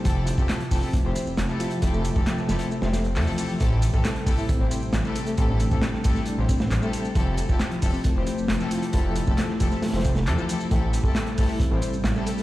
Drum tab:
RD |----x-------x-------x-------x---|----x-------x-------x-------x---|----x-------x-------x-------x---|----x-------x-------x-------x---|
HH |x---x---x-x-o---x---x---x---x-x-|x---x---x-----x-----x-x-o-------|x---x---x-x-o---x---x---x---x-x-|x---x---x---x---x---x---x---x---|
SH |x---x-x-x---x-x-x---x-x-x-x-x-x-|x-x-x-x-x-x-x-x-x-x-x-x-x-x-x-x-|x---x-x-x---x-x-x---x-x-x-x-x-x-|x---x-x-x---x-x-x---x-x-x-x-x-x-|
CP |--------x---------------x-------|--------x---------------x-------|--------x---------------x-------|--------x---------------x-------|
SD |--------o---------------o-o-----|--------o-o-o-----o-o-----------|--------o---------------o-o-----|--------o-o---o-------o---------|
BD |o-----o-----o---o---------------|o-----o-------------------------|o-----o-----o---o---------------|o-----o-----o-------o-----------|

RD |----x-------x-------x-------x---|----x-------x-------x-------x---|----x-------x-------x-------x---|
HH |x---x---x-x-o---x---x---x---x-x-|x---x---x---x---xxxxx---x---x---|x---x---x-x-o---x---x---x---x-x-|
SH |x---x-x-x---x-x-x---x-x-x-x-x-x-|x---x-x-x---x-x-x---x-x-x-x-x-x-|x---x-x-x---x-x-x---x-x-x-x-x-x-|
CP |--------x---------------x-------|--------x---------------x-------|--------x---------------x-------|
SD |--------o---------------o-o-----|--------o-o---o-oooo--o---------|--------o---------------o-o-----|
BD |o-----o-----o---o---------------|o-----o-----o-------o-----------|o-----o-----o---o---------------|